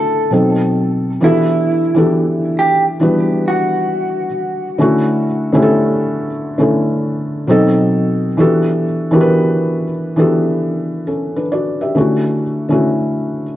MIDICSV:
0, 0, Header, 1, 3, 480
1, 0, Start_track
1, 0, Tempo, 895522
1, 651, Time_signature, 4, 2, 24, 8
1, 7270, End_track
2, 0, Start_track
2, 0, Title_t, "Clean electric guitar"
2, 0, Program_c, 0, 27
2, 0, Note_on_c, 0, 69, 73
2, 157, Note_off_c, 0, 69, 0
2, 664, Note_on_c, 0, 64, 105
2, 1116, Note_off_c, 0, 64, 0
2, 1387, Note_on_c, 0, 67, 94
2, 1521, Note_off_c, 0, 67, 0
2, 1865, Note_on_c, 0, 66, 66
2, 2557, Note_off_c, 0, 66, 0
2, 7270, End_track
3, 0, Start_track
3, 0, Title_t, "Felt piano"
3, 0, Program_c, 1, 0
3, 0, Control_c, 1, 64, 127
3, 0, Note_on_c, 1, 50, 70
3, 0, Note_on_c, 1, 57, 79
3, 0, Note_on_c, 1, 61, 68
3, 0, Note_on_c, 1, 64, 77
3, 0, Note_on_c, 1, 66, 81
3, 165, Note_on_c, 1, 47, 79
3, 168, Note_off_c, 1, 50, 0
3, 169, Note_on_c, 1, 54, 70
3, 170, Note_off_c, 1, 57, 0
3, 172, Note_off_c, 1, 61, 0
3, 174, Note_off_c, 1, 64, 0
3, 174, Note_on_c, 1, 60, 75
3, 177, Note_off_c, 1, 66, 0
3, 179, Note_on_c, 1, 63, 68
3, 180, Control_c, 1, 64, 0
3, 183, Note_on_c, 1, 69, 83
3, 286, Control_c, 1, 64, 127
3, 582, Note_off_c, 1, 47, 0
3, 584, Note_off_c, 1, 54, 0
3, 586, Note_off_c, 1, 60, 0
3, 589, Note_off_c, 1, 63, 0
3, 591, Note_off_c, 1, 69, 0
3, 646, Note_on_c, 1, 52, 77
3, 650, Note_on_c, 1, 59, 71
3, 653, Note_on_c, 1, 62, 70
3, 657, Note_on_c, 1, 66, 69
3, 659, Control_c, 1, 64, 0
3, 660, Note_on_c, 1, 67, 64
3, 664, Note_on_c, 1, 69, 81
3, 746, Control_c, 1, 64, 127
3, 895, Note_off_c, 1, 52, 0
3, 897, Note_off_c, 1, 59, 0
3, 899, Note_off_c, 1, 62, 0
3, 901, Note_off_c, 1, 66, 0
3, 902, Note_off_c, 1, 67, 0
3, 904, Note_off_c, 1, 69, 0
3, 1042, Note_on_c, 1, 52, 82
3, 1045, Note_on_c, 1, 59, 63
3, 1048, Note_on_c, 1, 62, 67
3, 1052, Note_on_c, 1, 66, 65
3, 1056, Note_on_c, 1, 67, 70
3, 1059, Note_on_c, 1, 69, 86
3, 1431, Note_off_c, 1, 52, 0
3, 1433, Note_off_c, 1, 59, 0
3, 1434, Note_off_c, 1, 62, 0
3, 1436, Note_off_c, 1, 66, 0
3, 1438, Note_off_c, 1, 67, 0
3, 1440, Note_off_c, 1, 69, 0
3, 1605, Note_on_c, 1, 52, 71
3, 1608, Note_on_c, 1, 59, 78
3, 1612, Note_on_c, 1, 62, 79
3, 1616, Note_on_c, 1, 66, 72
3, 1619, Note_on_c, 1, 55, 63
3, 1622, Note_on_c, 1, 71, 89
3, 2282, Note_off_c, 1, 52, 0
3, 2284, Note_off_c, 1, 59, 0
3, 2286, Note_off_c, 1, 62, 0
3, 2287, Note_off_c, 1, 66, 0
3, 2289, Note_off_c, 1, 55, 0
3, 2291, Note_off_c, 1, 71, 0
3, 2566, Note_on_c, 1, 50, 85
3, 2570, Note_on_c, 1, 57, 84
3, 2574, Note_on_c, 1, 61, 86
3, 2578, Control_c, 1, 64, 0
3, 2579, Note_on_c, 1, 64, 83
3, 2583, Note_on_c, 1, 66, 103
3, 2659, Control_c, 1, 64, 127
3, 2815, Note_off_c, 1, 50, 0
3, 2817, Note_off_c, 1, 57, 0
3, 2819, Note_off_c, 1, 61, 0
3, 2821, Note_off_c, 1, 64, 0
3, 2824, Note_off_c, 1, 66, 0
3, 2962, Note_on_c, 1, 50, 98
3, 2967, Note_on_c, 1, 57, 87
3, 2971, Note_on_c, 1, 61, 88
3, 2975, Note_on_c, 1, 64, 87
3, 2980, Note_on_c, 1, 67, 74
3, 2998, Note_off_c, 1, 67, 0
3, 3015, Note_on_c, 1, 69, 107
3, 3351, Note_off_c, 1, 50, 0
3, 3354, Note_off_c, 1, 57, 0
3, 3356, Note_off_c, 1, 61, 0
3, 3358, Note_off_c, 1, 64, 0
3, 3378, Note_off_c, 1, 69, 0
3, 3525, Note_on_c, 1, 50, 85
3, 3529, Note_on_c, 1, 57, 70
3, 3534, Note_on_c, 1, 61, 78
3, 3538, Note_on_c, 1, 64, 76
3, 3543, Note_on_c, 1, 69, 86
3, 4006, Note_on_c, 1, 47, 89
3, 4008, Note_off_c, 1, 50, 0
3, 4010, Note_off_c, 1, 57, 0
3, 4010, Note_on_c, 1, 54, 91
3, 4013, Note_off_c, 1, 61, 0
3, 4015, Note_off_c, 1, 64, 0
3, 4015, Note_on_c, 1, 60, 83
3, 4016, Note_off_c, 1, 69, 0
3, 4018, Note_on_c, 1, 63, 94
3, 4019, Control_c, 1, 64, 0
3, 4024, Note_on_c, 1, 69, 102
3, 4102, Control_c, 1, 64, 127
3, 4422, Note_off_c, 1, 47, 0
3, 4424, Note_off_c, 1, 54, 0
3, 4427, Note_off_c, 1, 60, 0
3, 4429, Note_off_c, 1, 63, 0
3, 4431, Note_off_c, 1, 69, 0
3, 4486, Note_on_c, 1, 52, 87
3, 4489, Note_on_c, 1, 59, 84
3, 4493, Note_on_c, 1, 62, 74
3, 4497, Note_on_c, 1, 66, 83
3, 4499, Control_c, 1, 64, 0
3, 4500, Note_on_c, 1, 67, 76
3, 4504, Note_on_c, 1, 69, 105
3, 4608, Control_c, 1, 64, 127
3, 4735, Note_off_c, 1, 52, 0
3, 4737, Note_off_c, 1, 59, 0
3, 4739, Note_off_c, 1, 62, 0
3, 4741, Note_off_c, 1, 66, 0
3, 4742, Note_off_c, 1, 67, 0
3, 4744, Note_off_c, 1, 69, 0
3, 4882, Note_on_c, 1, 52, 96
3, 4886, Note_on_c, 1, 59, 85
3, 4890, Note_on_c, 1, 62, 74
3, 4893, Note_on_c, 1, 66, 86
3, 4897, Note_on_c, 1, 67, 84
3, 4900, Note_on_c, 1, 70, 75
3, 4918, Note_off_c, 1, 70, 0
3, 4935, Note_on_c, 1, 71, 99
3, 5271, Note_off_c, 1, 52, 0
3, 5273, Note_off_c, 1, 59, 0
3, 5275, Note_off_c, 1, 62, 0
3, 5277, Note_off_c, 1, 66, 0
3, 5279, Note_off_c, 1, 67, 0
3, 5298, Note_off_c, 1, 71, 0
3, 5445, Note_on_c, 1, 52, 78
3, 5449, Note_on_c, 1, 59, 76
3, 5453, Note_on_c, 1, 62, 71
3, 5457, Note_on_c, 1, 66, 71
3, 5461, Note_on_c, 1, 67, 68
3, 5464, Note_on_c, 1, 69, 86
3, 5926, Note_off_c, 1, 69, 0
3, 5932, Note_off_c, 1, 62, 0
3, 5934, Note_off_c, 1, 66, 0
3, 5934, Note_on_c, 1, 69, 60
3, 5936, Note_off_c, 1, 67, 0
3, 5938, Note_on_c, 1, 61, 50
3, 6082, Note_off_c, 1, 69, 0
3, 6084, Note_off_c, 1, 61, 0
3, 6092, Note_on_c, 1, 71, 64
3, 6095, Note_on_c, 1, 62, 58
3, 6122, Note_off_c, 1, 52, 0
3, 6124, Note_off_c, 1, 59, 0
3, 6169, Note_off_c, 1, 71, 0
3, 6171, Note_off_c, 1, 62, 0
3, 6174, Note_on_c, 1, 74, 72
3, 6177, Note_on_c, 1, 66, 60
3, 6322, Note_off_c, 1, 74, 0
3, 6324, Note_off_c, 1, 66, 0
3, 6331, Note_on_c, 1, 76, 67
3, 6334, Note_on_c, 1, 67, 53
3, 6404, Note_on_c, 1, 50, 82
3, 6409, Note_on_c, 1, 57, 73
3, 6413, Note_on_c, 1, 61, 62
3, 6417, Control_c, 1, 64, 0
3, 6417, Note_on_c, 1, 64, 64
3, 6421, Note_on_c, 1, 66, 87
3, 6507, Control_c, 1, 64, 127
3, 6558, Note_off_c, 1, 76, 0
3, 6560, Note_off_c, 1, 67, 0
3, 6654, Note_off_c, 1, 50, 0
3, 6656, Note_off_c, 1, 57, 0
3, 6659, Note_off_c, 1, 61, 0
3, 6661, Note_off_c, 1, 64, 0
3, 6663, Note_off_c, 1, 66, 0
3, 6802, Note_on_c, 1, 50, 75
3, 6806, Note_on_c, 1, 57, 65
3, 6810, Note_on_c, 1, 61, 72
3, 6814, Note_on_c, 1, 64, 72
3, 6820, Note_on_c, 1, 66, 81
3, 7191, Note_off_c, 1, 50, 0
3, 7193, Note_off_c, 1, 57, 0
3, 7195, Note_off_c, 1, 61, 0
3, 7198, Note_off_c, 1, 64, 0
3, 7200, Note_off_c, 1, 66, 0
3, 7270, End_track
0, 0, End_of_file